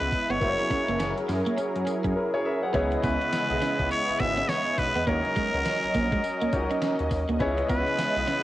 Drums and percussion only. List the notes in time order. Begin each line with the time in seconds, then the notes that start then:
0.01 closed hi-hat
0.12 kick, open hi-hat
0.30 closed hi-hat
0.41 kick, closed hi-hat, tambourine
0.59 closed hi-hat
0.70 kick, closed hi-hat, tambourine
0.88 closed hi-hat
1.00 snare, closed hi-hat, tambourine
1.18 closed hi-hat
1.29 snare, open hi-hat, tambourine
1.47 closed hi-hat
1.58 closed hi-hat, tambourine
1.76 closed hi-hat
1.87 closed hi-hat, tambourine
2.04 kick, closed hi-hat
2.74 kick, closed hi-hat
2.92 closed hi-hat
3.03 kick, closed hi-hat, tambourine
3.21 closed hi-hat
3.32 snare, closed hi-hat, tambourine
3.50 closed hi-hat
3.62 snare, open hi-hat, tambourine
3.79 kick, closed hi-hat
3.91 closed hi-hat, tambourine
4.09 closed hi-hat
4.20 kick, closed hi-hat, tambourine
4.38 closed hi-hat
4.49 snare, closed hi-hat, tambourine
4.66 closed hi-hat
4.78 kick, open hi-hat, tambourine
4.96 closed hi-hat
5.07 kick, closed hi-hat
5.25 closed hi-hat
5.36 kick, closed hi-hat, tambourine
5.54 closed hi-hat
5.65 snare, closed hi-hat, tambourine
5.83 closed hi-hat
5.94 kick, open hi-hat, tambourine
6.12 kick, closed hi-hat
6.24 closed hi-hat, tambourine
6.42 closed hi-hat
6.53 kick, closed hi-hat, tambourine
6.71 closed hi-hat
6.82 snare, closed hi-hat, tambourine
6.99 closed hi-hat
7.11 kick, open hi-hat, tambourine
7.29 closed hi-hat
7.40 kick, closed hi-hat
7.58 closed hi-hat
7.69 kick, closed hi-hat, tambourine
7.87 closed hi-hat
7.98 snare, closed hi-hat, tambourine
8.16 closed hi-hat
8.28 snare, open hi-hat, tambourine